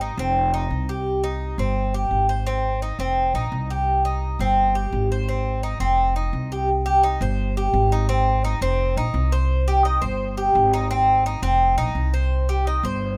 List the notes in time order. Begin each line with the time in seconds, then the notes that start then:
Already playing: G#1
0.01 D#4
0.17 F1 C4
0.54 D#4
0.70 C2
0.89 G4
1.24 D#4
1.58 G1 C4
1.94 G4
2.11 G#1
2.29 C5
2.47 C4
2.82 D#4
2.99 F1 C4
3.34 A#1 D#4
3.52 C2
3.70 G4
4.05 D#4
4.39 G1 C4
4.75 G4
4.92 G#1
5.12 C5
5.29 C4
5.63 D#4
5.80 F1 C4
6.16 D#4
6.33 C2
6.52 G4
6.86 G4
7.03 D#4
7.21 G1 C5
7.57 G4
7.74 G#1
7.92 D#4
8.09 C4
8.44 D#4
8.61 F1 C4
8.97 A#1 D#4
9.14 C2
9.32 C5
9.68 G4
9.85 D#4
10.02 G1 C5
10.37 G4
10.55 G#1
10.73 D#4
10.91 C4
11.26 D#4
11.42 F1 C4
11.77 A#1 D#4
11.95 C2
12.14 C5
12.49 G4
12.67 D#4
12.83 G1 C5